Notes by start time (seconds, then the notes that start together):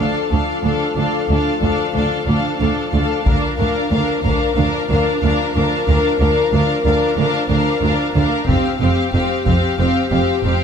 Already playing: F3 A4
0.00 D4 A4 F5
0.31 D2 D4 A4 F5
0.64 D2 D4 A4 F5
0.96 D2 D4 A4 F5
1.29 D2 D4 A4 F5
1.61 D2 D4 A4 F5
1.94 D2 D4 A4 F5
2.27 D2 D4 A4 F5
2.60 D2 D4 A4 F5
2.93 D2 D4 A4 F5
3.24 D2 F3 D4 A#4 F5, taiko
3.57 D2 D4 A#4 F5
3.91 D2 D4 A#4 F5
4.24 D2 D4 A#4 F5, taiko
4.56 D2 D4 A#4 F5
4.89 D2 D4 A#4 F5
5.21 D2 D4 A#4 F5
5.54 D2 D4 A#4 F5
5.86 D2 D4 A#4 F5
6.19 D2 D4 A#4 F5
6.52 D2 D4 A#4 F5
6.85 D2 D4 A#4 F5
7.17 D2 D4 A#4 F5
7.48 D2 D4 A#4 F5
7.82 D2 D4 A#4 F5
8.14 D2 D4 A#4 F5
8.47 F1 F2 F3 C4 G4 F5, taiko
8.80 F1 F2 C4 G4 F5
9.13 F1 F2 C4 G4 F5
9.46 F1 F2 C4 G4 F5, taiko
9.79 F1 F2 C4 G4 F5
10.11 F1 F2 C4 G4 F5
10.44 F1 F2 C4 G4 F5